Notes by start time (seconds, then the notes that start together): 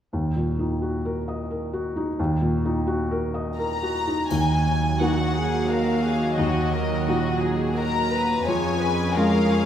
0.13 D#2
0.36 A#2
0.59 D#4
0.82 F#4
1.05 A#4
1.28 D#5
1.51 A#4
1.73 F#4
1.96 D#4
2.19 D#2
2.42 A#2
2.65 D#4
2.87 F#4
3.11 A#4
3.34 D#5
3.57 A#4 A#5
3.83 F#4
4.07 D#4
4.30 D#2 D#3 F#3 F#4 G#5, triangle
4.65 D#4
4.99 A#3 D#4 F#4 F#5
5.33 G#4 A#5
5.67 A#4 D#5 F5
6.05 G#4
6.37 D#2 D#3 F#4 D#5
6.72 D#4 A#4
7.07 A#2 D#4 F#4
7.42 G#4 A#5
7.76 A#4 D#5 A#5
8.12 B4
8.46 F2 F3 C#4 G#4 C#5 G#5
8.80 C#4 B4
9.15 G#3 C#4 F4 G#4 A#4 F5
9.51 G#4 C#6